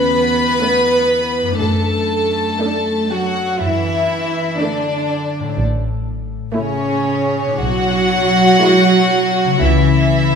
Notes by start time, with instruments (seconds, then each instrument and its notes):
Already playing: double bass section E2, harp E2 A3 C#4 G4, cello section B3, violin section B4 B5
0.60 viola section A3 C#4
1.43 harp F#2
1.48 harp A3
1.52 harp D4
1.56 double bass section F#2, cello section A3, harp A4, violin section A4
1.61 violin section A5
2.62 viola section A3 D4
3.10 cello section F#3, violin section F#4 F#5
3.59 double bass section F#2, cello section E3, violin section E4 E5
4.60 cello section D3, viola section A3 D4, violin section D4 D5
5.40 harp A2
5.44 harp A3
5.49 harp E4
5.53 harp A4
5.58 double bass section A1
6.54 cello section C#3, viola section A3 E4, violin section C#4 C#5
7.44 harp B2 D4
7.53 harp E4
7.58 cello section F#3, violin section F#4 F#5, harp G#4
7.62 double bass section B1
8.63 viola section G#3 E4
9.45 harp C#3
9.49 harp A3
9.54 harp E4
9.58 double bass section C#2, violin section E4, harp A4
9.62 cello section E3, violin section E5